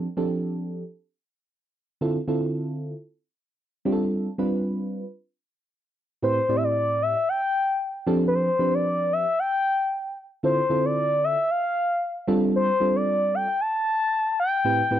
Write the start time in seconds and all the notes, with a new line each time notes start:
0.17 F3 C4 D4 G4 A4
2.01 D3 C4 E4 F4 A4
2.28 D3 C4 E4 F4 A4
3.85 G3 C4 D4 F4 G4
3.92 A4
4.38 G3 C4 D4 F4 B4
6.23 A2 C4 E4 G4 B4 C5
6.49 A2 C4 E4 G4 D5
6.56 E5
6.64 D5
7.02 E5
7.29 G5
8.07 F3 C4 D4 G4 A4
8.28 B4
8.34 C5
8.59 F3 C4 D4 G4 B4
8.74 D5
9.13 E5
9.39 G5
10.43 D3 C4 E4 F4 A4 C5
10.70 D3 C4 E4 F4 A4
10.85 D5
11.24 E5
11.50 F5
12.27 G3 C4 D4 F4 A4
12.56 C5
12.80 G3 C4 D4 F4 A4
12.96 D5
13.35 G5
13.61 A5
14.40 G5
14.64 A2 C4 E4 G4 B4
14.91 A2 C4 E4 G4 B4